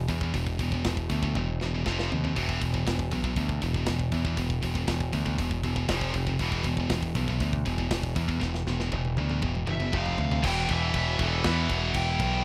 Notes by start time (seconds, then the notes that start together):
0.08 E2 B2, kick, open hi-hat
0.21 E2 B2, kick
0.33 E1 E2 B2, kick, open hi-hat
0.47 kick
0.59 E1 E2 B2, kick, open hi-hat
0.72 E2 B2, kick
0.85 E1 E2 B2, kick, snare, open hi-hat
0.97 kick
1.10 D2 E2 B2, kick, open hi-hat
1.23 E2 B2, kick
1.35 E1 E2 B2, kick, high tom
1.61 E1 E2 B2, snare
1.74 E2 B2
1.86 F1 F2 C3 F3, kick, snare
1.99 snare
2.10 D#2 F2 C3, floor tom
2.24 F2 C3, floor tom
2.35 E1 E2 B2 E3, kick, open hi-hat
2.49 kick
2.61 E1 E2 B2, kick, open hi-hat
2.73 E2 B2, kick
2.86 E1 E2 B2, kick, snare, open hi-hat
2.99 kick
3.11 B1 E2 B2, kick, open hi-hat
3.24 E2 B2, kick
3.36 D2 E2 B2, kick, open hi-hat
3.49 kick
3.62 E1 E2 B2, kick, open hi-hat
3.74 E2 B2, kick
3.86 E1 E2 B2, kick, snare, open hi-hat
3.99 kick
4.11 E2 B2, kick, open hi-hat
4.25 E2 B2, kick
4.36 E1 E2 B2, kick, open hi-hat
4.50 kick
4.61 E1 E2 B2, kick, open hi-hat
4.74 E2 B2, kick
4.87 E1 E2 B2, kick, snare, open hi-hat
5.00 kick
5.13 D2 E2 B2, kick, open hi-hat
5.26 E2 B2, kick
5.38 E1 E2 B2, kick, open hi-hat
5.51 kick
5.63 E1 E2 B2, kick, open hi-hat
5.76 E2 B2, kick
5.89 F1 F2 C3 F3, kick, snare, open hi-hat
6.01 kick
6.14 F1 F2 C3, kick, open hi-hat
6.27 F2 C3, kick
6.39 E1 E2 B2 E3, kick, open hi-hat
6.52 kick
6.63 E1 E2 B2, kick, open hi-hat
6.77 E2 B2, kick
6.90 E1 E2 B2, kick, snare, open hi-hat
7.03 kick
7.15 B1 E2 B2, kick, open hi-hat
7.28 E2 B2, kick
7.40 D2 E2 B2, kick, open hi-hat
7.53 kick
7.66 E1 E2 B2, kick, open hi-hat
7.78 E2 B2, kick
7.90 E1 E2 B2, kick, snare, open hi-hat
8.03 kick
8.16 E2 B2, kick, open hi-hat
8.29 E2 B2, kick
8.41 E1 E2 B2, kick, snare
8.54 snare
8.66 E1 E2 B2, snare
8.80 E2 B2, snare
8.92 E1 E2 B2, kick, high tom
9.05 high tom
9.17 D2 E2 B2, high tom
9.30 E2 B2, mid tom
9.42 E1 E2 B2, kick, mid tom
9.55 mid tom
9.67 F#1 E2 B2 E5, mid tom
9.80 E2 B2, mid tom
9.93 F1 F2 C3 F3 F5, kick, mid tom
10.06 floor tom
10.18 D2 F2 C3, floor tom
10.32 F2 C3, floor tom
10.43 E1 E2 B2 E3 G5, kick, crash
10.69 E1 E5, kick, crash
10.94 E1, kick, crash
11.19 E1 E2 B2 E3 A4, kick, crash
11.44 E2 B4, kick, snare, crash
11.69 E1 F#5, kick, crash
11.94 E1 G5, kick, crash
12.20 B1, kick, crash